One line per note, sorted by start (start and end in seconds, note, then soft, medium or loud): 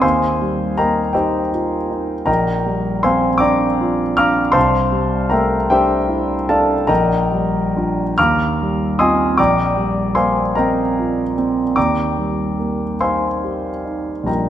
0.02 2.24 D#2 soft
0.02 0.74 C5 medium
0.02 0.74 F5 medium
0.02 0.74 G#5 medium
0.02 0.78 C6 medium
0.41 1.01 G3 soft
0.78 1.38 A#3 soft
0.78 1.13 A#4 soft
0.78 1.13 D#5 medium
0.78 1.11 G5 soft
0.78 1.15 A#5 medium
1.13 1.75 D#4 soft
1.13 1.49 G4 soft
1.13 1.50 C5 soft
1.13 1.50 D#5 soft
1.13 1.51 G5 medium
1.53 2.13 F4 soft
1.90 2.28 D#4 soft
2.26 4.51 A#1 soft
2.26 3.00 A#4 medium
2.26 3.00 D#5 medium
2.26 3.00 G5 medium
2.26 3.04 A#5 medium
2.66 3.28 G3 soft
3.03 3.66 C4 soft
3.03 3.40 C5 medium
3.03 3.40 F5 medium
3.03 3.40 G#5 medium
3.03 3.42 C6 medium
3.38 4.02 D4 soft
3.38 4.13 D5 medium
3.38 4.12 G5 medium
3.38 4.13 A#5 medium
3.38 4.15 D6 medium
3.81 4.41 F4 soft
4.17 4.56 D4 soft
4.17 4.51 F5 medium
4.17 4.53 A#5 medium
4.17 4.53 D6 medium
4.17 4.55 F6 medium
4.52 6.85 C2 soft
4.52 5.27 C5 medium
4.52 5.27 F5 medium
4.52 5.27 A5 medium
4.52 5.31 C6 medium
4.92 5.56 G3 soft
5.30 5.96 A3 soft
5.30 5.69 A#4 medium
5.30 5.69 E5 medium
5.30 5.68 G5 medium
5.30 5.71 A#5 medium
5.70 6.34 D4 soft
5.70 6.45 G4 medium
5.70 6.46 C5 medium
5.70 6.45 E5 medium
5.70 6.49 G5 medium
6.09 6.72 E4 soft
6.49 6.89 D4 soft
6.49 6.86 A4 medium
6.49 6.86 D5 medium
6.49 6.86 F5 medium
6.49 6.89 A5 medium
6.87 8.13 A#1 soft
6.87 8.13 A#4 medium
6.87 8.13 D#5 medium
6.87 8.13 G5 medium
6.87 8.16 A#5 medium
7.31 8.01 G3 soft
7.76 8.14 D4 soft
7.76 8.14 F4 soft
8.18 9.36 D#2 soft
8.18 8.96 F5 medium
8.18 8.96 A#5 medium
8.18 8.95 D6 medium
8.18 8.99 F6 medium
8.62 9.24 G3 soft
8.99 9.35 C4 soft
8.99 9.35 F4 soft
8.99 9.36 D#5 medium
8.99 9.36 G#5 medium
8.99 9.36 C6 medium
8.99 9.38 D#6 medium
9.38 11.73 A#1 medium
9.38 10.13 D5 medium
9.38 10.13 G5 medium
9.38 10.13 A#5 medium
9.38 10.16 D6 medium
9.77 10.40 G3 soft
10.15 10.80 A#3 soft
10.15 10.54 C5 soft
10.15 10.54 F5 soft
10.15 10.53 G#5 medium
10.15 10.56 C6 medium
10.55 11.21 C4 soft
10.55 11.32 A#4 soft
10.55 11.32 D#5 medium
10.55 11.33 G5 medium
10.55 11.36 A#5 medium
10.99 11.62 F4 soft
11.38 11.77 C4 soft
11.76 14.24 D#2 soft
11.76 12.95 D5 medium
11.76 12.95 G5 medium
11.76 12.96 A#5 soft
11.76 12.99 D6 medium
12.18 12.83 G3 soft
12.59 13.25 A#3 soft
13.00 13.68 D#4 soft
13.00 14.25 C5 soft
13.00 14.24 F5 soft
13.00 14.24 G#5 soft
13.00 14.28 C6 medium
13.44 14.11 G4 soft
13.85 14.28 D#4 soft
14.23 14.49 A#1 soft
14.23 14.49 G3 soft
14.23 14.49 A#3 soft
14.23 14.49 D4 soft
14.23 14.49 F4 soft
14.23 14.49 D#5 soft
14.23 14.49 A#5 soft
14.27 14.49 A#4 soft
14.27 14.49 G5 soft